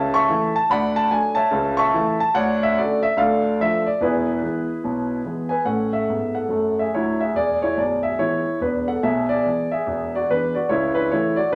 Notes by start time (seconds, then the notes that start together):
Already playing: C#2 C#3 C#5 E5 A5
0.14 E5 A5 C#6
0.29 E3 A3 E4
0.56 A5
0.70 D2 D3 D5 F#5 B5
0.96 A5
1.11 F#3 A3 D4 G#5
1.35 C#5 E5 A5
1.51 C#2 C#3
1.77 E5 A5 C#6
1.94 E3 A3 E4
2.20 A5
2.34 D2 D3 C#5 D5 F#5
2.63 E5
2.78 D3 A3 C#4 F#4 A4 D5
3.03 E5
3.17 D2 D3 A4 D5 F5
3.60 F3 A3 D4 E5
3.86 D5
4.01 E1 E2 E4 G#4 B4
4.43 E3 G#3 B3
4.84 B1 B2
5.25 E3 G#3 B3
5.49 B4 G#5
5.65 A2 C#4 A4 F#5
5.93 A4 E5
6.09 G#2 B3
6.35 A4 F#5
6.48 F#2 A3
6.79 G#4 E5
6.94 D2 F#3 E4 C#5
7.21 G#4 E5
7.35 E1 E2 G#4 D5
7.62 E4 C#5
7.77 B0 B1 G#4 D5
8.03 G#4 E5
8.19 E3 G#3 B3 E4 C#5
8.60 E1 E2 D4 B4
8.88 A4 F#5
9.03 B1 B2 G#4 E5
9.29 G#4 D5
9.45 E3 G#3 B3
9.71 G#4 E5
9.86 E1 E2
10.15 F#4 D5
10.29 E3 G#3 B3 D4 B4
10.55 F#4 D5
10.69 C#2 C#3 E4 C#5
10.95 D4 B4
11.11 E3 A3 E4 C#5
11.36 F#4 D5
11.52 C#3